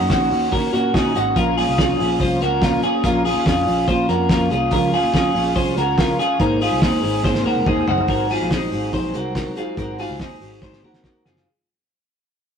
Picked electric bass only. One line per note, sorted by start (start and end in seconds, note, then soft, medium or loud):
0.00 0.09 F#2 loud
0.10 0.28 A#1 medium
0.31 0.54 D#2 loud
0.53 0.70 D#3 loud
0.73 0.91 A#2 medium
0.94 1.12 A#2 loud
1.16 1.33 G#1 loud
1.36 1.63 A#1 loud
1.68 1.94 C2 loud
1.99 2.17 A#1 loud
2.20 2.38 C2 loud
2.41 2.77 C#2 loud
3.04 3.31 A#1 loud
3.35 3.44 D#2 loud
3.46 3.64 F2 loud
3.67 3.85 A#1 medium
3.88 4.06 A#2 loud
4.09 4.27 F2 medium
4.30 4.48 F2 loud
4.51 4.69 C2 loud
4.72 4.99 C#2 loud
5.03 5.30 D#2 medium
5.35 5.56 A#1 medium
5.56 5.74 C2 loud
5.77 6.13 C#2 loud
6.40 6.67 G#1 loud
6.71 6.81 C2 loud
6.82 7.00 D#2 medium
7.03 7.21 G#1 loud
7.24 7.42 G#2 loud
7.45 7.63 D#2 loud
7.66 7.84 D#2 loud
7.88 8.06 F#1 loud
8.08 8.35 G#1 loud
8.41 8.68 A#1 medium
8.72 8.90 G#1 medium
8.93 9.11 A#1 medium
9.15 9.50 C2 medium
9.77 10.04 G#1 medium
10.10 10.18 C#2 medium
10.20 10.38 D#2 medium
10.41 10.59 G#1 medium
10.62 10.80 G#2 loud
10.83 11.01 D#2 medium
11.04 11.22 D#2 medium
11.26 11.43 F#1 medium